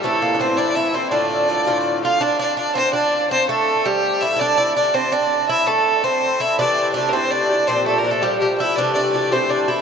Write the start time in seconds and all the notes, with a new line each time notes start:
0.03 A2 E3 A3 C4 E4 A4
0.22 A#3
0.34 D4
0.39 A2 E3 C4 E4 C5
0.57 A2 E3 C4 D4 E4 D5
0.75 E4 E5
0.93 E3 C4 E4 C5
1.11 A2 D3 A3 D4 F4 D5
1.48 A2 D3 A3 F4
1.66 A2 D3 A3 F4
2.03 D3 A3 F4 F5
2.21 D4 D5
2.39 D4 D5
2.57 D4 D5
2.75 C4 C5
2.93 D4 D5
3.31 C4 C5
3.49 A3 A4
3.85 G3 G4
4.21 E4 E5
4.36 E4 D5
4.41 D4
4.58 E4
4.76 D4 D5
4.94 C4 C5
5.12 D4 D5
5.49 E4 E5
5.67 A3 A4
6.04 C4 C5
6.40 E4 E5
6.59 C3 E3 A3 D4 G4 D5
6.94 C3 E3 A3 D4 G4 D5
7.09 A#4 C5
7.13 C3 E3 A3 C4 G4
7.31 D4 D5
7.49 E3 A3 G4
7.67 A#2 F3 C4 D4 G4 C5
7.86 A3 A4
7.99 A#4
8.04 A#2 F3 D4 G4
8.10 A3 A4
8.22 A#2 F3 G3 D4 G4
8.40 G3 G4
8.58 F3 D4 E4 G4 E5
8.76 C3 E3 A3 D4 G4 D5
8.94 D4 D5
9.13 C3 E3 A3 G4 D5
9.31 C3 E3 A3 C4 G4 C5
9.50 D4 D5
9.68 E3 A3 E4 G4 E5